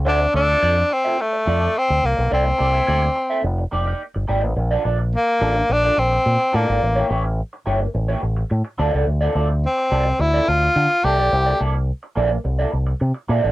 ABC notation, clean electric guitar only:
X:1
M:4/4
L:1/16
Q:1/4=107
K:Bblyd
V:1 name="Clean electric guitar"
[CFAd] z [CFAd] [CFAe] [CFAd] z2 [CFAe] z2 [CFAd] [CFAd] z4 | [B,EAd] z [B,EAd] [B,EAe] [B,EAd] z2 [B,EAe] z2 [B,_EGd] [B,EGd] z2 [B,EGd] z | z [DFAd] [DFAd] z3 [DFAd] z2 [DFAd] z4 [DFAd] [DFAd] | z [B,EG^c] [B,EGc] z3 [B,EGc] z2 [B,EGc] z4 [=CFAd] [CFAd] |
z [CFAd] [CFAd] z3 [CFAd] z2 [CFAd] z4 [B,EAd] [B,EAd] | z [B,EAd] [B,EAd] z3 [B,EAd] z2 [B,EAd] z4 [B,EAd] [B,EAd] |]